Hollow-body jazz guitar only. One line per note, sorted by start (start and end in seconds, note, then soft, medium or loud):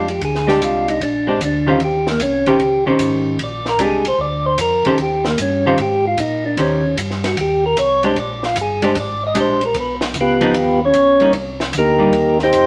0.47 0.98 G#3 medium
0.47 0.98 D4 medium
0.47 0.98 G4 medium
1.27 1.39 G#3 medium
1.27 1.39 D4 medium
1.27 1.40 G4 medium
1.66 1.79 D#3 medium
1.66 1.79 C#4 medium
1.66 1.79 G4 medium
1.66 1.79 C5 medium
2.47 2.59 D#3 medium
2.47 2.59 C#4 medium
2.47 2.59 G4 medium
2.47 2.59 C5 medium
2.86 3.36 D#3 medium
2.86 3.37 C#4 medium
2.86 3.37 G4 medium
2.86 3.37 C5 medium
3.80 4.03 G#3 soft
3.80 4.03 D4 medium
3.80 4.04 G4 medium
4.86 4.97 D#3 medium
4.86 4.98 C#4 medium
4.86 4.98 G4 medium
4.86 4.98 C5 medium
5.66 5.77 D#3 medium
5.66 5.77 C#4 medium
5.66 5.78 G4 medium
5.66 5.78 C5 medium
6.58 6.82 D#3 soft
6.58 6.82 C#4 soft
6.58 6.82 G4 medium
6.58 6.82 C5 medium
8.04 8.15 G#3 medium
8.04 8.16 D4 medium
8.04 8.16 G4 medium
8.82 8.94 G#3 medium
8.82 8.95 D4 medium
8.82 8.95 G4 medium
9.35 9.59 G#3 medium
9.35 9.59 D4 medium
9.35 9.60 G4 medium
10.41 10.53 F3 medium
10.41 10.53 B3 medium
10.41 10.54 D#4 loud
11.21 11.33 G3 medium
11.21 11.33 A#3 medium
11.21 11.33 D#4 medium
11.99 12.11 G3 medium
11.99 12.12 A#3 medium
11.99 12.12 D#4 medium